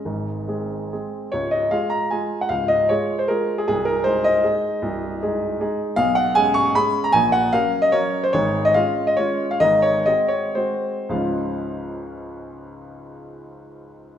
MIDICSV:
0, 0, Header, 1, 2, 480
1, 0, Start_track
1, 0, Key_signature, -5, "major"
1, 0, Tempo, 426439
1, 52, Time_signature, 3, 2, 24, 8
1, 1495, Tempo, 397614
1, 2455, Tempo, 384369
1, 7735, Tempo, 393185
1, 9655, Tempo, 413223
1, 11095, Tempo, 446429
1, 12055, Tempo, 502092
1, 12535, Tempo, 540054
1, 13975, Tempo, 516351
1, 15837, End_track
2, 0, Start_track
2, 0, Title_t, "Upright piano"
2, 0, Program_c, 0, 0
2, 0, Note_on_c, 0, 75, 76
2, 60, Note_on_c, 0, 32, 42
2, 64, Note_on_c, 0, 44, 49
2, 280, Control_c, 0, 64, 127
2, 515, Note_off_c, 0, 32, 0
2, 517, Note_off_c, 0, 44, 0
2, 534, Note_on_c, 0, 56, 37
2, 538, Note_on_c, 0, 60, 36
2, 551, Note_on_c, 0, 68, 43
2, 984, Note_off_c, 0, 56, 0
2, 986, Note_off_c, 0, 60, 0
2, 992, Note_off_c, 0, 68, 0
2, 1039, Control_c, 0, 64, 0
2, 1040, Note_on_c, 0, 56, 38
2, 1045, Note_on_c, 0, 60, 36
2, 1046, Note_on_c, 0, 68, 39
2, 1268, Note_off_c, 0, 75, 0
2, 1457, Note_off_c, 0, 56, 0
2, 1460, Note_off_c, 0, 60, 0
2, 1461, Note_off_c, 0, 68, 0
2, 1482, Note_on_c, 0, 73, 89
2, 1495, Note_on_c, 0, 25, 48
2, 1502, Note_on_c, 0, 37, 53
2, 1716, Note_on_c, 0, 75, 80
2, 1728, Note_off_c, 0, 73, 0
2, 1735, Control_c, 0, 64, 127
2, 1957, Note_on_c, 0, 77, 87
2, 1961, Note_off_c, 0, 25, 0
2, 1961, Note_on_c, 0, 56, 41
2, 1964, Note_off_c, 0, 37, 0
2, 1966, Note_off_c, 0, 75, 0
2, 1969, Note_on_c, 0, 65, 41
2, 1969, Note_on_c, 0, 68, 44
2, 1986, Control_c, 0, 64, 0
2, 2182, Note_on_c, 0, 82, 85
2, 2205, Note_off_c, 0, 77, 0
2, 2399, Note_off_c, 0, 56, 0
2, 2404, Note_off_c, 0, 65, 0
2, 2404, Note_off_c, 0, 68, 0
2, 2433, Note_on_c, 0, 80, 72
2, 2439, Note_off_c, 0, 82, 0
2, 2445, Note_on_c, 0, 56, 40
2, 2445, Note_on_c, 0, 65, 41
2, 2454, Note_on_c, 0, 68, 44
2, 2813, Note_off_c, 0, 80, 0
2, 2817, Note_on_c, 0, 78, 79
2, 2888, Note_off_c, 0, 65, 0
2, 2889, Note_off_c, 0, 56, 0
2, 2894, Note_off_c, 0, 68, 0
2, 2912, Note_on_c, 0, 77, 93
2, 2922, Note_on_c, 0, 37, 54
2, 2931, Note_on_c, 0, 25, 49
2, 2939, Note_off_c, 0, 78, 0
2, 3153, Note_on_c, 0, 75, 90
2, 3161, Control_c, 0, 64, 127
2, 3164, Note_off_c, 0, 77, 0
2, 3396, Note_off_c, 0, 37, 0
2, 3400, Note_off_c, 0, 25, 0
2, 3408, Note_off_c, 0, 75, 0
2, 3413, Note_on_c, 0, 73, 86
2, 3426, Note_on_c, 0, 56, 42
2, 3426, Note_on_c, 0, 65, 43
2, 3434, Control_c, 0, 64, 0
2, 3435, Note_on_c, 0, 68, 47
2, 3784, Note_on_c, 0, 72, 76
2, 3787, Note_off_c, 0, 73, 0
2, 3868, Note_off_c, 0, 56, 0
2, 3868, Note_off_c, 0, 65, 0
2, 3873, Note_off_c, 0, 68, 0
2, 3899, Note_on_c, 0, 70, 83
2, 3911, Note_off_c, 0, 72, 0
2, 3912, Note_on_c, 0, 56, 46
2, 3914, Note_on_c, 0, 65, 44
2, 3923, Note_on_c, 0, 68, 51
2, 4259, Note_off_c, 0, 68, 0
2, 4269, Note_off_c, 0, 70, 0
2, 4278, Note_on_c, 0, 68, 76
2, 4343, Note_off_c, 0, 56, 0
2, 4344, Note_off_c, 0, 65, 0
2, 4378, Note_off_c, 0, 68, 0
2, 4397, Note_on_c, 0, 68, 93
2, 4405, Note_on_c, 0, 36, 58
2, 4407, Note_on_c, 0, 24, 54
2, 4613, Note_on_c, 0, 70, 94
2, 4626, Note_off_c, 0, 68, 0
2, 4638, Control_c, 0, 64, 127
2, 4848, Note_on_c, 0, 72, 97
2, 4855, Note_off_c, 0, 36, 0
2, 4856, Note_off_c, 0, 24, 0
2, 4857, Note_off_c, 0, 70, 0
2, 4865, Note_on_c, 0, 56, 47
2, 4865, Note_on_c, 0, 68, 47
2, 4867, Note_on_c, 0, 63, 46
2, 5098, Note_off_c, 0, 72, 0
2, 5102, Note_on_c, 0, 75, 98
2, 5302, Note_off_c, 0, 56, 0
2, 5302, Note_off_c, 0, 68, 0
2, 5303, Note_off_c, 0, 63, 0
2, 5339, Note_on_c, 0, 56, 47
2, 5351, Note_on_c, 0, 68, 51
2, 5353, Note_on_c, 0, 63, 48
2, 5366, Control_c, 0, 64, 0
2, 5772, Note_off_c, 0, 56, 0
2, 5778, Note_off_c, 0, 68, 0
2, 5780, Note_off_c, 0, 63, 0
2, 5827, Note_on_c, 0, 36, 61
2, 5830, Note_on_c, 0, 24, 56
2, 6059, Control_c, 0, 64, 127
2, 6291, Note_off_c, 0, 36, 0
2, 6293, Note_off_c, 0, 24, 0
2, 6329, Note_on_c, 0, 63, 51
2, 6332, Note_on_c, 0, 68, 52
2, 6333, Note_on_c, 0, 56, 50
2, 6757, Note_off_c, 0, 63, 0
2, 6759, Note_off_c, 0, 56, 0
2, 6759, Note_off_c, 0, 68, 0
2, 6797, Note_on_c, 0, 56, 53
2, 6802, Control_c, 0, 64, 0
2, 6802, Note_on_c, 0, 63, 53
2, 6811, Note_on_c, 0, 68, 58
2, 7220, Note_off_c, 0, 56, 0
2, 7223, Note_off_c, 0, 63, 0
2, 7228, Note_off_c, 0, 68, 0
2, 7250, Note_on_c, 0, 77, 118
2, 7254, Note_on_c, 0, 47, 61
2, 7256, Note_on_c, 0, 35, 65
2, 7264, Note_off_c, 0, 75, 0
2, 7486, Note_on_c, 0, 78, 109
2, 7490, Note_off_c, 0, 77, 0
2, 7507, Control_c, 0, 64, 127
2, 7715, Note_off_c, 0, 47, 0
2, 7716, Note_off_c, 0, 35, 0
2, 7730, Note_off_c, 0, 78, 0
2, 7734, Note_on_c, 0, 80, 121
2, 7745, Note_on_c, 0, 56, 53
2, 7746, Note_on_c, 0, 61, 53
2, 7753, Note_on_c, 0, 68, 53
2, 7968, Note_on_c, 0, 85, 112
2, 7976, Note_off_c, 0, 80, 0
2, 8180, Note_off_c, 0, 56, 0
2, 8180, Note_off_c, 0, 61, 0
2, 8184, Note_off_c, 0, 68, 0
2, 8219, Note_off_c, 0, 85, 0
2, 8225, Note_on_c, 0, 83, 115
2, 8228, Note_on_c, 0, 56, 52
2, 8233, Note_on_c, 0, 68, 57
2, 8235, Control_c, 0, 64, 0
2, 8236, Note_on_c, 0, 61, 50
2, 8576, Note_on_c, 0, 82, 97
2, 8586, Note_off_c, 0, 83, 0
2, 8657, Note_off_c, 0, 56, 0
2, 8660, Note_off_c, 0, 68, 0
2, 8661, Note_off_c, 0, 61, 0
2, 8679, Note_on_c, 0, 80, 120
2, 8691, Note_on_c, 0, 34, 72
2, 8695, Note_on_c, 0, 46, 61
2, 8697, Note_off_c, 0, 82, 0
2, 8921, Note_on_c, 0, 78, 109
2, 8923, Note_off_c, 0, 80, 0
2, 8928, Control_c, 0, 64, 127
2, 9150, Note_off_c, 0, 34, 0
2, 9152, Note_off_c, 0, 46, 0
2, 9162, Note_off_c, 0, 78, 0
2, 9169, Note_on_c, 0, 77, 111
2, 9177, Note_on_c, 0, 54, 51
2, 9184, Control_c, 0, 64, 0
2, 9184, Note_on_c, 0, 61, 51
2, 9184, Note_on_c, 0, 70, 58
2, 9526, Note_on_c, 0, 75, 99
2, 9532, Note_off_c, 0, 77, 0
2, 9612, Note_off_c, 0, 54, 0
2, 9615, Note_off_c, 0, 61, 0
2, 9615, Note_off_c, 0, 70, 0
2, 9651, Note_on_c, 0, 73, 105
2, 9654, Note_off_c, 0, 75, 0
2, 9658, Note_on_c, 0, 54, 55
2, 9664, Note_on_c, 0, 61, 51
2, 9666, Note_on_c, 0, 70, 60
2, 10014, Note_off_c, 0, 73, 0
2, 10017, Note_on_c, 0, 72, 94
2, 10089, Note_off_c, 0, 54, 0
2, 10092, Note_off_c, 0, 61, 0
2, 10093, Note_off_c, 0, 70, 0
2, 10125, Note_on_c, 0, 73, 104
2, 10135, Note_off_c, 0, 72, 0
2, 10141, Note_on_c, 0, 32, 69
2, 10142, Note_on_c, 0, 44, 62
2, 10332, Control_c, 0, 64, 127
2, 10481, Note_off_c, 0, 73, 0
2, 10498, Note_on_c, 0, 75, 99
2, 10594, Note_off_c, 0, 32, 0
2, 10595, Note_off_c, 0, 44, 0
2, 10607, Note_on_c, 0, 77, 103
2, 10611, Note_off_c, 0, 75, 0
2, 10616, Note_on_c, 0, 56, 51
2, 10617, Control_c, 0, 64, 0
2, 10628, Note_on_c, 0, 65, 55
2, 10629, Note_on_c, 0, 61, 50
2, 10971, Note_off_c, 0, 77, 0
2, 10987, Note_on_c, 0, 75, 96
2, 11055, Note_off_c, 0, 56, 0
2, 11061, Note_off_c, 0, 61, 0
2, 11061, Note_off_c, 0, 65, 0
2, 11098, Note_on_c, 0, 73, 97
2, 11104, Note_off_c, 0, 75, 0
2, 11110, Note_on_c, 0, 61, 48
2, 11113, Note_on_c, 0, 65, 54
2, 11114, Note_on_c, 0, 56, 48
2, 11450, Note_off_c, 0, 73, 0
2, 11466, Note_on_c, 0, 77, 91
2, 11531, Note_off_c, 0, 61, 0
2, 11533, Note_off_c, 0, 56, 0
2, 11533, Note_off_c, 0, 65, 0
2, 11566, Note_on_c, 0, 75, 113
2, 11571, Note_on_c, 0, 32, 62
2, 11575, Note_off_c, 0, 77, 0
2, 11582, Note_on_c, 0, 44, 59
2, 11794, Control_c, 0, 64, 127
2, 11804, Note_on_c, 0, 73, 97
2, 11806, Note_off_c, 0, 75, 0
2, 12044, Note_off_c, 0, 32, 0
2, 12050, Note_off_c, 0, 44, 0
2, 12055, Note_off_c, 0, 73, 0
2, 12056, Note_on_c, 0, 75, 94
2, 12062, Note_on_c, 0, 56, 45
2, 12062, Note_on_c, 0, 60, 46
2, 12068, Note_on_c, 0, 66, 49
2, 12074, Control_c, 0, 64, 0
2, 12272, Note_on_c, 0, 73, 89
2, 12289, Note_off_c, 0, 75, 0
2, 12501, Note_off_c, 0, 56, 0
2, 12501, Note_off_c, 0, 60, 0
2, 12503, Note_off_c, 0, 66, 0
2, 12527, Note_on_c, 0, 72, 78
2, 12528, Note_off_c, 0, 73, 0
2, 12529, Note_on_c, 0, 56, 47
2, 12536, Note_on_c, 0, 60, 45
2, 12545, Note_on_c, 0, 66, 48
2, 12995, Note_off_c, 0, 56, 0
2, 12998, Note_off_c, 0, 60, 0
2, 13002, Note_off_c, 0, 66, 0
2, 13009, Note_on_c, 0, 37, 58
2, 13017, Note_on_c, 0, 53, 51
2, 13020, Note_on_c, 0, 44, 46
2, 13020, Note_on_c, 0, 77, 69
2, 13024, Note_on_c, 0, 56, 49
2, 13026, Note_on_c, 0, 61, 51
2, 13026, Note_on_c, 0, 65, 50
2, 13029, Note_off_c, 0, 72, 0
2, 13228, Control_c, 0, 64, 127
2, 15827, Note_off_c, 0, 37, 0
2, 15835, Note_off_c, 0, 53, 0
2, 15837, Note_off_c, 0, 44, 0
2, 15837, Note_off_c, 0, 56, 0
2, 15837, Note_off_c, 0, 61, 0
2, 15837, Note_off_c, 0, 65, 0
2, 15837, Note_off_c, 0, 77, 0
2, 15837, End_track
0, 0, End_of_file